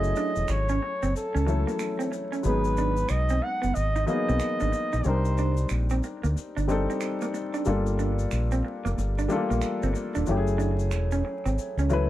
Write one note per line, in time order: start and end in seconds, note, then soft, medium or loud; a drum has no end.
0.00 0.12 F#1 loud
0.00 0.95 F#3 medium
0.00 0.96 A3 medium
0.00 0.96 C#4 medium
0.00 0.97 E4 medium
0.00 0.97 G#4 medium
0.00 0.52 D#5 loud
0.00 shaker soft
0.16 0.33 D4 medium
0.16 shaker soft
0.36 0.47 E1 medium
0.36 shaker soft
0.48 0.78 G#1 medium
0.48 1.15 C#5 medium
0.48 finger snap medium
0.48 shaker medium
0.69 0.79 C#4 medium
0.69 shaker soft
0.83 muted clean electric guitar stroke soft
1.03 1.13 F#1 medium
1.03 1.12 C4 medium
1.03 shaker soft
1.15 2.09 A4 medium
1.15 muted fingered electric bass stroke soft
1.15 shaker medium
1.34 1.64 C#2 medium
1.34 1.44 C#4 medium
1.34 shaker soft
1.46 2.32 F#3 medium
1.46 2.32 A3 medium
1.46 2.33 C#4 medium
1.46 2.33 E4 medium
1.46 2.34 A4 medium
1.46 muted clean electric guitar stroke soft
1.46 shaker soft
1.67 1.77 A#3 medium
1.67 shaker soft
1.79 finger snap medium
1.79 shaker medium
1.99 2.09 C4 medium
1.99 shaker soft
2.12 muted clean electric guitar stroke soft
2.12 shaker soft
2.32 2.42 C#4 medium
2.32 shaker soft
2.43 3.03 G#1 loud
2.43 3.56 F#3 medium
2.43 3.56 G#3 medium
2.43 3.57 B3 medium
2.43 3.57 D#4 medium
2.43 3.58 G#4 medium
2.43 3.12 B4 medium
2.43 shaker medium
2.64 shaker soft
2.77 2.94 D4 medium
2.77 shaker soft
2.97 shaker soft
3.09 3.39 B1 medium
3.09 3.45 D#5 medium
3.09 finger snap medium
3.09 shaker medium
3.29 3.40 C4 medium
3.29 shaker soft
3.42 3.76 F#5 loud
3.42 muted clean electric guitar stroke soft
3.62 3.74 F#1 medium
3.62 3.72 B3 medium
3.62 shaker soft
3.75 4.05 G#1 medium
3.75 4.07 D#5 medium
3.75 shaker medium
3.96 4.05 D#4 medium
3.96 shaker soft
4.06 4.93 F#3 medium
4.06 4.93 A#3 medium
4.06 4.94 B3 medium
4.06 4.94 D#4 medium
4.06 4.94 G#4 medium
4.06 5.09 D#5 loud
4.06 muted clean electric guitar stroke soft
4.06 shaker soft
4.28 4.39 B1 medium
4.28 4.38 C4 medium
4.28 shaker soft
4.40 finger snap medium
4.40 shaker medium
4.60 4.72 G#1 medium
4.60 4.70 D4 medium
4.60 shaker soft
4.72 muted clean electric guitar stroke soft
4.72 shaker soft
4.93 5.04 A#1 medium
4.93 5.03 D#4 medium
4.93 shaker soft
5.04 5.64 C2 loud
5.04 6.17 G3 medium
5.04 6.17 C4 medium
5.04 6.18 D4 medium
5.04 6.18 D#4 medium
5.04 5.71 C5 medium
5.04 shaker medium
5.08 6.19 A#4 medium
5.25 shaker soft
5.38 5.55 D4 medium
5.38 shaker soft
5.57 shaker soft
5.69 6.00 A#1 medium
5.69 finger snap medium
5.69 shaker medium
5.90 6.01 C4 medium
5.90 shaker soft
6.03 muted clean electric guitar stroke soft
6.03 shaker soft
6.23 6.34 D2 medium
6.23 6.33 A#3 medium
6.23 shaker soft
6.36 muted fingered electric bass stroke soft
6.36 shaker medium
6.56 6.86 G1 medium
6.56 6.66 D4 medium
6.56 shaker soft
6.67 7.54 G3 medium
6.67 7.54 C4 medium
6.67 7.54 D4 medium
6.67 7.55 D#4 medium
6.67 7.56 A4 medium
6.67 muted clean electric guitar stroke soft
6.67 shaker soft
6.90 6.99 C4 medium
6.90 shaker soft
7.01 finger snap medium
7.01 shaker medium
7.21 7.32 A#3 medium
7.21 shaker soft
7.34 muted clean electric guitar stroke soft
7.34 shaker soft
7.54 7.64 D4 medium
7.54 shaker soft
7.65 8.25 G1 loud
7.65 8.78 G3 medium
7.65 8.78 A#3 medium
7.65 8.79 D4 medium
7.65 8.79 F4 medium
7.65 8.79 A4 medium
7.65 shaker medium
7.86 shaker soft
7.99 8.16 D4 medium
7.99 shaker soft
8.19 shaker soft
8.31 8.61 A#1 medium
8.31 finger snap medium
8.31 shaker medium
8.52 8.62 C4 medium
8.52 shaker soft
8.64 muted clean electric guitar stroke soft
8.85 8.96 F1 medium
8.85 8.94 A#3 medium
8.85 shaker soft
8.98 9.26 G1 medium
8.98 shaker medium
9.19 9.28 D4 medium
9.19 shaker soft
9.28 10.15 G3 medium
9.28 9.37 A3 medium
9.28 10.15 D4 medium
9.28 10.16 F4 medium
9.28 10.16 A4 medium
9.28 muted clean electric guitar stroke soft
9.28 shaker soft
9.36 10.18 A#3 medium
9.50 9.61 A#1 medium
9.50 9.60 A#3 medium
9.50 shaker soft
9.62 finger snap medium
9.62 shaker medium
9.83 9.93 G1 medium
9.83 9.93 C4 medium
9.83 shaker soft
9.94 muted clean electric guitar stroke soft
9.94 shaker soft
10.15 10.26 D#1 medium
10.15 10.25 D4 medium
10.15 shaker soft
10.26 10.93 F#1 loud
10.26 11.39 F#3 medium
10.26 11.39 A3 medium
10.26 11.40 C#4 medium
10.26 11.40 E4 medium
10.26 shaker medium
10.31 10.37 G4 medium
10.37 11.44 G#4 medium
10.47 shaker soft
10.58 10.75 D4 medium
10.58 shaker soft
10.79 shaker soft
10.91 11.22 E1 medium
10.91 finger snap medium
10.91 shaker medium
11.12 11.22 C#4 medium
11.12 shaker soft
11.25 muted clean electric guitar stroke soft
11.46 11.56 G#1 medium
11.46 11.55 C4 medium
11.46 shaker soft
11.58 muted fingered electric bass stroke soft
11.58 shaker medium
11.77 12.07 C#2 medium
11.77 11.88 C#4 medium
11.77 shaker soft
11.90 12.10 F#3 medium
11.90 12.10 A3 medium
11.90 12.10 C#4 medium
11.90 12.10 E4 medium
11.90 12.10 B4 loud
11.90 muted clean electric guitar stroke soft
11.90 shaker soft